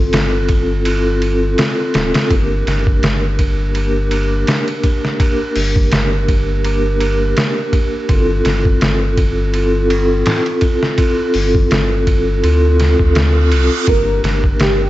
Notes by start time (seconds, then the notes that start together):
Already playing: C4 E4 F4 A4
0.13 G1, snare, ride
0.49 kick, ride
0.85 C4 E4 F4 A4, ride
1.22 ride
1.58 snare, ride
1.79 C4 E4 F4 A4
1.94 D1, snare, ride
2.14 snare, ride
2.31 G1 A#3 D4 G4 A#4, kick, ride
2.67 G1, snare, ride
2.87 kick
3.02 G1, snare, ride
3.39 kick, ride
3.75 A#3 D4 G4 A#4, ride
4.11 A#3 D4 G4 A#4, ride
4.47 snare, ride
4.68 ride
4.83 kick, ride
5.05 snare
5.20 A#3 D4 G4 A#4, kick, ride
5.56 G1, open hi-hat
5.76 kick
5.92 G1, snare, ride
6.28 kick, ride
6.64 A#3 D4 G4 A#4, ride
7.00 A#3 D4 G4 A#4, ride
7.37 snare, ride
7.73 kick, ride
8.09 G1 C4 E4 F4 A4, kick, ride
8.45 G1, snare, ride
8.65 kick
8.81 G1, snare, ride
9.18 kick, ride
9.54 C4 E4 F4 A4, ride
9.89 C4 E4 F4 A4, ride
10.26 snare, ride
10.46 ride
10.61 kick, ride
10.83 snare
10.98 C4 E4 F4 A4, kick, ride
11.34 G1, open hi-hat
11.55 kick
11.71 G1, snare, ride
12.07 kick, ride
12.43 D2 C4 E4 F4 A4, ride, reverse cymbal
12.80 snare, ride
12.99 D2, kick
13.15 snare, ride
13.36 C4 E4 F4 A4
13.52 C2, ride
13.87 G1 A#3 D4 G4 A#4, kick, ride
14.23 G1, snare, ride
14.44 kick
14.59 G1 G4, snare, ride